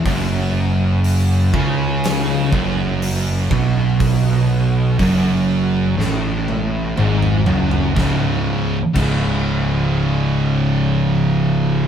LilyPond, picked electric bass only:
\new Staff \with { instrumentName = "Picked electric bass" } { \clef bass \time 4/4 \key fis \dorian \tempo 4 = 61 fis,,4. cis,4 fis,,4 b,,8~ | b,,4 fis,,4 a,,4 gis,,8 fis,,8 | cis,,8 r8 cis,,2. | }